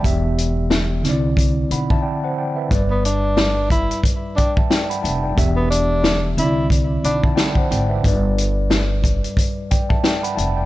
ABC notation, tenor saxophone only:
X:1
M:4/4
L:1/16
Q:"Swing 16ths" 1/4=90
K:G
V:1 name="Tenor saxophone"
z16 | z B, D4 E2 z2 D z4 z | z B, D4 E2 z2 D z4 z | z16 |]